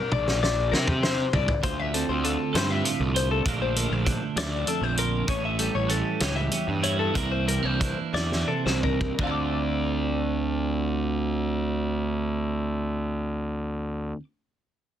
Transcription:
Already playing: A#4
0.12 A#1 D5, high tom
0.28 snare
0.43 D5, snare
0.72 C3 A#4, snare
0.87 G4, mid tom
1.03 C5, snare
1.33 C2 D5, floor tom
1.48 floor tom
1.63 D2 F4 C5, kick, closed hi-hat
1.80 E5
1.94 C4 A4, closed hi-hat
2.09 D2 C5
2.23 D3 F4 A4, closed hi-hat
2.53 G2 A4 C5, snare, closed hi-hat
2.71 E5
2.84 A2 F4, closed hi-hat
3.00 C2
3.15 C5, closed hi-hat
3.31 A4
3.45 A#1 A#2 D3 A3 D4 F4 A#4, kick, closed hi-hat
3.62 C5
3.76 A3 A#4, closed hi-hat
3.91 A#1 C5
4.05 D3 D4, kick, closed hi-hat
4.36 D2 E4 D5, snare, closed hi-hat
4.67 F2 D4 A4, closed hi-hat
4.81 A#1 C5
4.97 F4 A#4, closed hi-hat
5.28 A1 A2 C#4 C#5, kick, closed hi-hat
5.45 E5
5.59 G3 A4, closed hi-hat
5.75 A1 C#5
5.88 E3 C#4 A4, closed hi-hat
6.20 C#2 G4 C#5, snare, closed hi-hat
6.36 E5
6.51 E2 C#4, closed hi-hat
6.68 G2
6.83 E4 C#5, closed hi-hat
6.99 A4
7.14 C2 C3 E3 A#3 D4 E4 A#4, kick, closed hi-hat
7.32 C5
7.47 G3 A#4, closed hi-hat
7.63 C2 A#3 C5
7.79 E3 D4, kick, closed hi-hat
8.14 E2 E4 D5, snare
8.32 snare
8.47 C3 D4 A4
8.66 C2 C5, snare
8.83 A#4, floor tom
9.01 kick
9.18 D2 D3 D5, kick
9.23 C4 F4 A4 F5
9.27 A5
9.31 D6

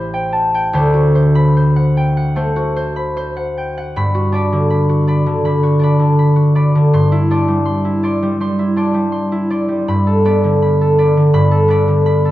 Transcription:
Already playing: A1 A2 E3 G4 B4 C5 E5 G5 B5
0.14 G5
0.33 A5
0.55 G5
0.73 D2 D3 C5
0.94 F#4
1.15 C5
1.35 B5
1.57 C5
1.76 F#5
1.97 G5
2.17 F#5
2.36 A3 C5
2.56 F#4
2.76 C5
2.96 B5
3.17 C5
3.37 F#5
3.57 G5
3.78 F#5
3.96 G2 B5
4.15 F#4
4.32 D4 D5 B5
4.52 D3
4.70 B5
4.89 F#4
5.07 D5 B5
5.26 D3
5.45 D3 B5
5.63 F#4
5.79 D4 D5
5.84 B5
5.99 D3
6.19 B5
6.36 F#4
6.55 D5 B5
6.75 D3
6.93 G2 C6
7.12 E4
7.31 D4 D5 C6
7.48 G3
7.66 C6
7.85 E4
8.03 D5 C6
8.22 G3
8.40 G3 C6
8.59 E4
8.76 D4 D5 C6
8.94 G3
9.12 C6
9.32 E4
9.50 D5 C6
9.68 G3
9.88 G2 B5
10.07 A4
10.25 B3 D5 B5
10.44 D3
10.62 B5
10.81 A4
10.98 D5 B5
11.17 D3
11.34 G2 B5
11.51 A4
11.68 B3 D5 B5
11.88 D3
12.06 B5
12.25 A4

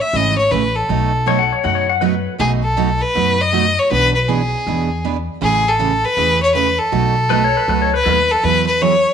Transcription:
0.01 E5
0.13 G#1 C#3 E3 A3 C#4 G#4 D#5
0.38 C#5
0.51 A1 C#3 E3 A3 C#4 G#4 B4
0.76 A4
0.89 B1 B2 F#3 A3 D#4 F#4
1.26 B2 F#3 A3 D#4 F#4 C#5
1.39 F#5
1.53 C#5
1.63 F#2 B2 F#3 A3 D#4 F#4 F#5
1.75 C#5
1.89 F#5
2.01 B2 F#3 A3 D#4 F#4 B4
2.38 B1 B2 F#3 A3 D#4 F#4 G#4
2.63 A4
2.77 B2 F#3 A3 D#4 F#4
3.02 B4
3.15 F#2 B2 F#3 A3 D#4 F#4
3.41 D#5
3.52 B2 F#3 A3 D#4 F#4
3.79 C#5
3.90 B1 B2 E3 B3 D4 G#4 B4
4.15 B4
4.28 B2 E3 B3 D4 G#4
4.67 E2 B2 E3 B3 D4 G#4
5.04 B2 E3 B3 D4 G#4
5.41 A1 C#3 E3 A3 C#4 G#4
5.68 A4
5.79 C#3 E3 A3 C#4 G#4
6.05 B4
6.17 E2 C#3 E3 A3 C#4 G#4
6.43 C#5
6.55 C#3 E3 A3 C#4 G#4 B4
6.79 A4
6.92 B1 B2 F#3 A3 D#4 F#4
7.30 B2 F#3 A3 D#4 F#4 B4
7.44 C#5
7.57 B4
7.68 C#2 B2 F#3 A3 D#4 F#4 B4
7.82 C#5
7.94 B4
8.05 D#2 B2 F#3 A3 D#4 F#4 B4
8.31 A4
8.43 E2 E3 F#3 B3 E4 G#4 B4
8.66 B4
8.81 E3 F#3 B3 E4 G#4 C#5

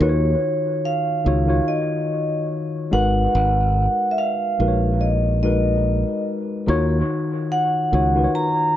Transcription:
0.00 D#2 D#3 D#4 F4 F#4 B4 C#5
0.09 C#5
0.85 F5
1.24 C#2 D#3 D#4 F4 F#4 C#5
1.46 D#3 D#4 F4 F#4 C#5
1.68 D#5
2.91 G#1 G#3 D#4 F#4 A#4 B4 F#5
3.35 G#1
4.11 E5
4.18 F5
4.59 A#1 G#3 D#4 F#4 A#4 B4
4.68 C#5
5.01 D#5
5.43 G#3 D#4 F#4 A#4 B4 D#5
6.67 D#2 D#3 D#4 F4 F#4 C#5
7.52 F#5
7.92 C#2 D#3 D#4 F4 F#4 C#5
8.15 D#3 D#4 F4 F#4 B4
8.24 C#5
8.35 A#5

